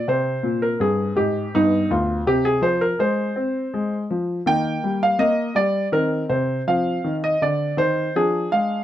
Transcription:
<<
  \new Staff \with { instrumentName = "Grand piano" } { \time 3/4 \key c \minor \tempo 4 = 82 << { c''8. bes'16 aes'8 g'8 ees'8 f'8 | g'16 aes'16 c''16 bes'16 c''4. r8 | g''8. f''16 ees''8 d''8 bes'8 c''8 | f''8. ees''16 d''8 c''8 aes'8 f''8 | } \\ { c'2 b4 | c'2. | bes2 c'4 | c'2 d'4 | } >> }
  \new Staff \with { instrumentName = "Grand piano" } { \clef bass \time 3/4 \key c \minor c8 bes,8 g,8 aes,8 g,8 d,8 | c8 f8 aes8 c'8 aes8 f8 | ees8 g8 bes8 g8 ees8 c8 | f8 ees8 d8 ees8 f8 aes8 | }
>>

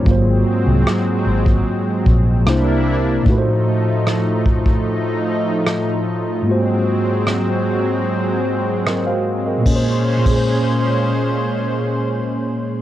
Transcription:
<<
  \new Staff \with { instrumentName = "Tine electric piano" } { \time 4/4 \key bes \minor \tempo 4 = 75 << { r1 | r1 | r2. <bes' ees''>16 <c'' f''>8 <bes' ees''>16~ | <bes' ees''>16 r2. r8. | } \\ { <aes, ges bes f' c''>2. <c bes d' e' c''>4 | <a, a ees' ges' ces'' c''>1 | <aes, aes bes f' ges' c''>1 | <bes, bes des' aes' c''>16 r8 <bes, bes des' aes' c''>2.~ <bes, bes des' aes' c''>16 | } >> }
  \new Staff \with { instrumentName = "Analog synth pad" } { \clef bass \time 4/4 \key bes \minor <ges aes c'>2. <c bes d' e'>4 | <a, f a ees'>1 | <ges aes c'>1 | <bes, aes des' c''>1 | }
  \new Staff \with { instrumentName = "Fingered electric bass" } { \clef bass \time 4/4 \key bes \minor aes,,8 r16 c,16 r8 aes,,8 r8 bes,,8 c,4 | r1 | r1 | r1 | }
  \new DrumStaff \with { instrumentName = "Drums" } \drummode { \time 4/4 bd4 ss8. bd16 r8 bd8 ss4 | bd4 ss8 bd16 bd16 r4 ss4 | r4 ss4 r4 ss4 | <bd cymr>8. <bd cymr>16 r4 r4 r4 | }
>>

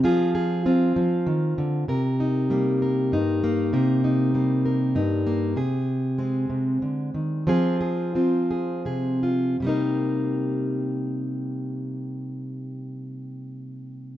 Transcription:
\new Staff \with { instrumentName = "Steel-string acoustic guitar" } { \time 6/8 \key c \minor \tempo 4. = 64 << { <f' aes'>8 aes'8 f'2 | bes'8 ees'8 bes8 bes'8 ees'8 bes8 | bes'8 ees'8 bes8 bes'8 ees'8 bes8 | aes'4 c'2 |
<c' f' aes'>8 aes'8 f'8 aes'8 aes'8 f'8 | <g bes ees' bes'>2.~ | <g bes ees' bes'>2. | } \\ { f4 c'8 f8 ees8 d8 | c4 g4 g,4 | c4 g4 g,4 | c4 aes8 c8 d8 ees8 |
f4 c'4 c4 | c2.~ | c2. | } >> }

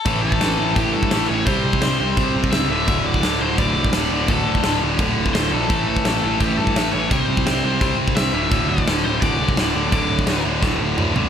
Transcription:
<<
  \new Staff \with { instrumentName = "Overdriven electric guitar" } { \time 4/4 \key a \phrygian \tempo 4 = 170 a'8 a'4. g'8 a'4 cis''8 | c''4 c''4. r8 e''8 e''8~ | e''8 d''4 c''8 d''2 | a'4. r4. c''8 a'8~ |
a'8 a'4. g'8 a'4 cis''8 | c''4 c''4. r8 e''8 e''8~ | e''8 d''4 c''8 d''2 | d''4. r2 r8 | }
  \new Staff \with { instrumentName = "Distorted electric guitar" } { \clef bass \time 4/4 \key a \phrygian <a, e a>4 <a, e a>8 <a, e a>8 <a, e a>4 <a, e a>8 <a, e a>8 | <c g c'>4 <c g c'>8 <c g c'>8 <c g c'>4 <c g c'>8 <d, a, d>8 | <d, a, d>4 <d, a, d>8 <d, a, d>8 <d, a, d>4 <d, a, d>8 <d, a, d>8 | <d, a, d>4 <d, a, d>8 <d, a, d>8 <d, a, d>4 <d, a, d>8 <d, a, d>8 |
<a, e a>4 <a, e a>8 <a, e a>8 <a, e a>4 <a, e a>8 <a, e a>8 | <c g c'>4 <c g c'>8 <c g c'>8 <c g c'>4 <c g c'>8 <d, a, d>8 | <d, a, d>4 <d, a, d>8 <d, a, d>8 <d, a, d>4 <d, a, d>8 <d, a, d>8 | <d, a, d>4 <d, a, d>8 <d, a, d>8 <d, a, d>4 <d, a, d>8 <d, a, d>8 | }
  \new Staff \with { instrumentName = "Picked electric bass" } { \clef bass \time 4/4 \key a \phrygian a,,8 a,,8 a,,8 a,,8 a,,8 g,8 a,,8 a,,8 | c,8 c,8 c,8 c,8 c,8 c,8 cis,8 d,,8 | d,,8 d,,8 d,,8 d,,8 d,,8 c,8 d,,8 d,,8 | d,,8 d,,8 d,,8 d,,8 d,,8 d,,8 d,,8 bes,,8 |
a,,8 a,,8 a,,8 a,,8 a,,8 g,8 a,,8 a,,8 | c,8 c,8 c,8 c,8 c,8 c,8 c,8 d,,8 | d,,8 d,,8 d,,8 d,,8 d,,8 c,8 d,,8 d,,8 | d,,8 d,,8 d,,8 d,,8 d,,8 d,,8 d,,8 c,8 | }
  \new DrumStaff \with { instrumentName = "Drums" } \drummode { \time 4/4 <cymc bd>8. bd16 <cymc sn>4 <cymc bd>8. bd16 <cymc sn>4 | <cymc bd>8. bd16 <cymc sn>4 <cymc bd>8. bd16 <cymc sn>4 | <cymc bd>8. bd16 <cymc sn>4 <cymc bd>8. bd16 <cymc sn>4 | <cymc bd>8. bd16 <cymc sn>4 <cymc bd>8. bd16 <cymc sn>4 |
<cymc bd>8. bd16 <cymc sn>4 <cymc bd>8. bd16 <cymc sn>4 | <cymc bd>8. bd16 <cymc sn>4 <cymc bd>8. bd16 <cymc sn>4 | <cymc bd>8. bd16 <cymc sn>4 <cymc bd>8. bd16 <cymc sn>4 | <cymc bd>8. bd16 <cymc sn>4 <bd sn>4 toml8 tomfh8 | }
>>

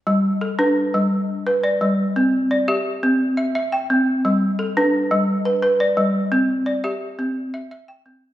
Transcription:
\new Staff \with { instrumentName = "Balafon" } { \time 12/8 \key g \major \tempo 4. = 115 << { r4 a'8 b'4. r4. d''4. | r4 d''8 e''4. r8 e''4 g''4. | r4 a'8 b'4. r8 b'4 d''4. | r4 d''8 e''4. r8 e''4 g''4. | } \\ { g4 r8 d'4 g4 r8 b'4 g4 | c'4 r8 g'4 c'4 r8 e''4 c'4 | g4 r8 d'4 g4 r8 b'4 g4 | c'4 r8 g'4 c'4 r8 e''4 c'4 | } >> }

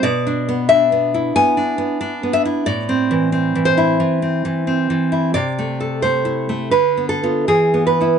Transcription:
\new Staff \with { instrumentName = "Nylon-string guitar" } { \time 4/4 \key a \minor \tempo 4 = 89 << { d''4 e''4 gis''4. e''8 | d''4. c''2~ c''8 | d''4 c''4 b'8 a'8 gis'8 b'8 | } \\ { \tuplet 3/2 { b,8 d'8 b8 d'8 b8 e'8 b8 d'8 b8 d'8 b8 e'8 } | \tuplet 3/2 { a,8 c'8 e8 c'8 e8 e'8 e8 c'8 e8 c'8 e8 e'8 } | \tuplet 3/2 { c8 a8 a'8 a8 e'8 a8 d8 b8 <b f'>8 e8 b8 <b e'>8 } | } >> }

